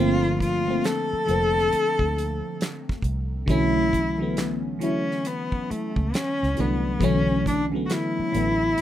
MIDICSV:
0, 0, Header, 1, 6, 480
1, 0, Start_track
1, 0, Key_signature, 2, "minor"
1, 0, Tempo, 882353
1, 1891, Time_signature, 4, 2, 24, 8
1, 4794, End_track
2, 0, Start_track
2, 0, Title_t, "Cello"
2, 0, Program_c, 0, 42
2, 0, Note_on_c, 0, 65, 96
2, 202, Note_off_c, 0, 65, 0
2, 225, Note_on_c, 0, 65, 89
2, 465, Note_on_c, 0, 69, 97
2, 473, Note_off_c, 0, 65, 0
2, 1418, Note_off_c, 0, 69, 0
2, 1903, Note_on_c, 0, 64, 99
2, 2355, Note_off_c, 0, 64, 0
2, 2622, Note_on_c, 0, 61, 80
2, 2864, Note_on_c, 0, 59, 84
2, 2872, Note_off_c, 0, 61, 0
2, 3105, Note_on_c, 0, 57, 79
2, 3113, Note_off_c, 0, 59, 0
2, 3351, Note_on_c, 0, 61, 93
2, 3359, Note_off_c, 0, 57, 0
2, 3591, Note_on_c, 0, 59, 86
2, 3599, Note_off_c, 0, 61, 0
2, 3832, Note_on_c, 0, 61, 100
2, 3840, Note_off_c, 0, 59, 0
2, 4061, Note_off_c, 0, 61, 0
2, 4067, Note_on_c, 0, 62, 91
2, 4159, Note_off_c, 0, 62, 0
2, 4276, Note_on_c, 0, 66, 62
2, 4309, Note_on_c, 0, 64, 99
2, 4317, Note_off_c, 0, 66, 0
2, 4794, Note_off_c, 0, 64, 0
2, 4794, End_track
3, 0, Start_track
3, 0, Title_t, "FM electric piano"
3, 0, Program_c, 1, 5
3, 0, Control_c, 1, 64, 127
3, 0, Note_on_c, 1, 50, 84
3, 0, Note_on_c, 1, 53, 81
3, 0, Note_on_c, 1, 57, 76
3, 0, Note_on_c, 1, 58, 76
3, 0, Note_on_c, 1, 60, 100
3, 0, Note_on_c, 1, 62, 70
3, 264, Note_off_c, 1, 50, 0
3, 267, Note_off_c, 1, 53, 0
3, 270, Note_off_c, 1, 57, 0
3, 273, Note_off_c, 1, 58, 0
3, 276, Note_off_c, 1, 60, 0
3, 359, Note_on_c, 1, 50, 62
3, 364, Note_on_c, 1, 53, 57
3, 370, Note_on_c, 1, 57, 55
3, 376, Note_on_c, 1, 58, 55
3, 382, Note_on_c, 1, 60, 67
3, 634, Note_off_c, 1, 50, 0
3, 637, Note_off_c, 1, 53, 0
3, 640, Note_off_c, 1, 57, 0
3, 642, Note_off_c, 1, 58, 0
3, 646, Note_off_c, 1, 60, 0
3, 685, Note_on_c, 1, 50, 63
3, 691, Note_on_c, 1, 53, 59
3, 697, Note_on_c, 1, 57, 56
3, 703, Note_on_c, 1, 58, 58
3, 709, Note_on_c, 1, 60, 73
3, 1458, Note_off_c, 1, 50, 0
3, 1462, Note_off_c, 1, 53, 0
3, 1465, Note_off_c, 1, 57, 0
3, 1467, Note_off_c, 1, 58, 0
3, 1471, Note_off_c, 1, 60, 0
3, 1883, Note_on_c, 1, 50, 88
3, 1889, Note_on_c, 1, 52, 75
3, 1897, Note_on_c, 1, 54, 76
3, 1898, Control_c, 1, 64, 0
3, 1902, Note_off_c, 1, 62, 0
3, 1902, Note_on_c, 1, 57, 76
3, 1907, Note_on_c, 1, 61, 95
3, 1998, Control_c, 1, 64, 127
3, 2184, Note_off_c, 1, 50, 0
3, 2187, Note_off_c, 1, 52, 0
3, 2191, Note_off_c, 1, 54, 0
3, 2194, Note_off_c, 1, 57, 0
3, 2196, Note_off_c, 1, 61, 0
3, 2276, Note_on_c, 1, 50, 70
3, 2280, Note_on_c, 1, 52, 59
3, 2287, Note_on_c, 1, 54, 61
3, 2293, Note_on_c, 1, 57, 62
3, 2299, Note_on_c, 1, 59, 74
3, 2553, Note_off_c, 1, 50, 0
3, 2555, Note_off_c, 1, 52, 0
3, 2558, Note_off_c, 1, 54, 0
3, 2561, Note_off_c, 1, 57, 0
3, 2564, Note_off_c, 1, 59, 0
3, 2606, Note_on_c, 1, 50, 66
3, 2612, Note_on_c, 1, 52, 58
3, 2618, Note_on_c, 1, 54, 62
3, 2624, Note_on_c, 1, 57, 59
3, 2631, Note_on_c, 1, 64, 73
3, 3379, Note_off_c, 1, 50, 0
3, 3382, Note_off_c, 1, 52, 0
3, 3385, Note_off_c, 1, 54, 0
3, 3388, Note_off_c, 1, 57, 0
3, 3391, Note_off_c, 1, 64, 0
3, 3564, Note_on_c, 1, 50, 61
3, 3572, Note_on_c, 1, 52, 57
3, 3577, Note_on_c, 1, 54, 57
3, 3583, Note_on_c, 1, 57, 58
3, 3589, Note_on_c, 1, 62, 69
3, 3772, Note_off_c, 1, 50, 0
3, 3775, Note_off_c, 1, 52, 0
3, 3778, Note_off_c, 1, 54, 0
3, 3781, Note_off_c, 1, 57, 0
3, 3784, Note_off_c, 1, 62, 0
3, 3805, Note_on_c, 1, 50, 91
3, 3811, Note_on_c, 1, 52, 82
3, 3817, Note_on_c, 1, 54, 80
3, 3822, Note_on_c, 1, 57, 78
3, 3828, Note_on_c, 1, 61, 98
3, 4105, Note_off_c, 1, 50, 0
3, 4108, Note_off_c, 1, 52, 0
3, 4111, Note_off_c, 1, 54, 0
3, 4114, Note_off_c, 1, 57, 0
3, 4117, Note_off_c, 1, 61, 0
3, 4199, Note_on_c, 1, 50, 63
3, 4204, Note_on_c, 1, 52, 55
3, 4210, Note_on_c, 1, 54, 56
3, 4217, Note_on_c, 1, 57, 59
3, 4222, Note_on_c, 1, 59, 69
3, 4474, Note_off_c, 1, 50, 0
3, 4477, Note_off_c, 1, 52, 0
3, 4479, Note_off_c, 1, 54, 0
3, 4483, Note_off_c, 1, 57, 0
3, 4486, Note_off_c, 1, 59, 0
3, 4529, Note_on_c, 1, 50, 70
3, 4534, Note_on_c, 1, 52, 58
3, 4539, Note_on_c, 1, 54, 61
3, 4544, Note_on_c, 1, 57, 59
3, 4551, Note_on_c, 1, 59, 69
3, 4794, Note_off_c, 1, 50, 0
3, 4794, Note_off_c, 1, 52, 0
3, 4794, Note_off_c, 1, 54, 0
3, 4794, Note_off_c, 1, 57, 0
3, 4794, Note_off_c, 1, 59, 0
3, 4794, End_track
4, 0, Start_track
4, 0, Title_t, "Fingered electric bass"
4, 0, Program_c, 2, 33
4, 0, Note_on_c, 2, 31, 87
4, 433, Note_off_c, 2, 31, 0
4, 700, Note_on_c, 2, 29, 82
4, 917, Note_off_c, 2, 29, 0
4, 1089, Note_on_c, 2, 38, 81
4, 1308, Note_off_c, 2, 38, 0
4, 1651, Note_on_c, 2, 36, 86
4, 1872, Note_off_c, 2, 36, 0
4, 1896, Note_on_c, 2, 35, 93
4, 2745, Note_off_c, 2, 35, 0
4, 3248, Note_on_c, 2, 37, 74
4, 3326, Note_off_c, 2, 37, 0
4, 3498, Note_on_c, 2, 37, 74
4, 3571, Note_off_c, 2, 37, 0
4, 3584, Note_on_c, 2, 36, 76
4, 3799, Note_off_c, 2, 36, 0
4, 3816, Note_on_c, 2, 35, 100
4, 4272, Note_off_c, 2, 35, 0
4, 4540, Note_on_c, 2, 33, 82
4, 4757, Note_off_c, 2, 33, 0
4, 4794, End_track
5, 0, Start_track
5, 0, Title_t, "Muted fingered electric bass strokes"
5, 615, Note_on_c, 9, 29, 44
5, 670, Note_off_c, 9, 29, 0
5, 943, Note_on_c, 9, 29, 41
5, 997, Note_off_c, 9, 29, 0
5, 3105, Note_on_c, 9, 29, 44
5, 3159, Note_off_c, 9, 29, 0
5, 4456, Note_on_c, 9, 29, 44
5, 4510, Note_off_c, 9, 29, 0
5, 4794, End_track
6, 0, Start_track
6, 0, Title_t, "Drums"
6, 220, Note_on_c, 9, 36, 79
6, 229, Note_on_c, 9, 42, 58
6, 274, Note_off_c, 9, 36, 0
6, 283, Note_off_c, 9, 42, 0
6, 459, Note_on_c, 9, 42, 84
6, 465, Note_on_c, 9, 38, 90
6, 468, Note_on_c, 9, 39, 74
6, 513, Note_off_c, 9, 42, 0
6, 519, Note_off_c, 9, 38, 0
6, 523, Note_off_c, 9, 39, 0
6, 698, Note_on_c, 9, 42, 65
6, 753, Note_off_c, 9, 42, 0
6, 864, Note_on_c, 9, 38, 28
6, 918, Note_off_c, 9, 38, 0
6, 938, Note_on_c, 9, 42, 79
6, 993, Note_off_c, 9, 42, 0
6, 1084, Note_on_c, 9, 36, 87
6, 1138, Note_off_c, 9, 36, 0
6, 1188, Note_on_c, 9, 42, 72
6, 1242, Note_off_c, 9, 42, 0
6, 1419, Note_on_c, 9, 42, 77
6, 1425, Note_on_c, 9, 38, 107
6, 1429, Note_on_c, 9, 39, 84
6, 1473, Note_off_c, 9, 42, 0
6, 1480, Note_off_c, 9, 38, 0
6, 1484, Note_off_c, 9, 39, 0
6, 1574, Note_on_c, 9, 36, 92
6, 1581, Note_on_c, 9, 38, 35
6, 1628, Note_off_c, 9, 36, 0
6, 1635, Note_off_c, 9, 38, 0
6, 1645, Note_on_c, 9, 36, 76
6, 1655, Note_on_c, 9, 42, 61
6, 1700, Note_off_c, 9, 36, 0
6, 1709, Note_off_c, 9, 42, 0
6, 1892, Note_on_c, 9, 36, 108
6, 1898, Note_on_c, 9, 42, 67
6, 1946, Note_off_c, 9, 36, 0
6, 1953, Note_off_c, 9, 42, 0
6, 2138, Note_on_c, 9, 36, 78
6, 2145, Note_on_c, 9, 42, 60
6, 2193, Note_off_c, 9, 36, 0
6, 2199, Note_off_c, 9, 42, 0
6, 2377, Note_on_c, 9, 42, 83
6, 2383, Note_on_c, 9, 38, 97
6, 2387, Note_on_c, 9, 39, 74
6, 2432, Note_off_c, 9, 42, 0
6, 2437, Note_off_c, 9, 38, 0
6, 2441, Note_off_c, 9, 39, 0
6, 2619, Note_on_c, 9, 42, 61
6, 2673, Note_off_c, 9, 42, 0
6, 2782, Note_on_c, 9, 38, 28
6, 2836, Note_off_c, 9, 38, 0
6, 2856, Note_on_c, 9, 42, 78
6, 2910, Note_off_c, 9, 42, 0
6, 3004, Note_on_c, 9, 36, 84
6, 3058, Note_off_c, 9, 36, 0
6, 3108, Note_on_c, 9, 42, 67
6, 3162, Note_off_c, 9, 42, 0
6, 3244, Note_on_c, 9, 36, 89
6, 3298, Note_off_c, 9, 36, 0
6, 3340, Note_on_c, 9, 42, 74
6, 3347, Note_on_c, 9, 38, 109
6, 3350, Note_on_c, 9, 39, 85
6, 3394, Note_off_c, 9, 42, 0
6, 3401, Note_off_c, 9, 38, 0
6, 3405, Note_off_c, 9, 39, 0
6, 3500, Note_on_c, 9, 38, 35
6, 3555, Note_off_c, 9, 38, 0
6, 3573, Note_on_c, 9, 42, 60
6, 3627, Note_off_c, 9, 42, 0
6, 3811, Note_on_c, 9, 36, 113
6, 3816, Note_on_c, 9, 42, 66
6, 3866, Note_off_c, 9, 36, 0
6, 3870, Note_off_c, 9, 42, 0
6, 4058, Note_on_c, 9, 36, 82
6, 4064, Note_on_c, 9, 42, 61
6, 4112, Note_off_c, 9, 36, 0
6, 4119, Note_off_c, 9, 42, 0
6, 4296, Note_on_c, 9, 42, 82
6, 4301, Note_on_c, 9, 38, 92
6, 4305, Note_on_c, 9, 39, 75
6, 4350, Note_off_c, 9, 42, 0
6, 4356, Note_off_c, 9, 38, 0
6, 4359, Note_off_c, 9, 39, 0
6, 4539, Note_on_c, 9, 42, 66
6, 4594, Note_off_c, 9, 42, 0
6, 4775, Note_on_c, 9, 42, 80
6, 4794, Note_off_c, 9, 42, 0
6, 4794, End_track
0, 0, End_of_file